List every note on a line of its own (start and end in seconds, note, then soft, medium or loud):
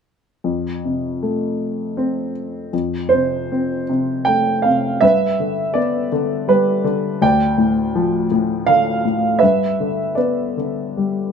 0.44 2.69 F2 soft
0.85 2.31 C3 soft
1.23 2.69 A3 soft
1.97 2.71 C4 soft
2.73 4.99 F2 soft
3.09 3.83 C5 medium
3.13 3.88 C3 soft
3.52 4.99 C4 soft
3.89 4.64 C3 soft
4.25 5.00 A3 soft
4.25 4.65 G5 medium
4.62 5.01 C3 soft
4.62 5.02 F5 medium
5.01 7.17 G2 soft
5.01 6.08 B4 soft
5.01 5.77 E5 medium
5.40 6.11 D3 soft
5.74 7.18 B3 soft
5.74 6.49 D5 medium
6.12 6.83 D3 soft
6.48 7.19 G3 soft
6.48 7.24 B4 medium
6.84 7.20 D3 soft
7.21 9.36 D2 medium
7.21 8.26 D5 soft
7.21 8.26 G5 medium
7.58 8.30 A2 soft
7.95 9.37 F3 medium
8.31 9.04 A2 soft
8.67 9.40 D3 soft
8.67 9.43 F5 medium
9.05 9.40 A2 soft
9.39 11.32 G2 soft
9.39 10.16 B4 soft
9.39 10.13 E5 medium
9.80 10.56 D3 soft
10.15 11.32 B3 soft
10.15 11.32 B4 soft
10.15 11.32 D5 soft
10.57 11.32 D3 soft
10.97 11.32 G3 soft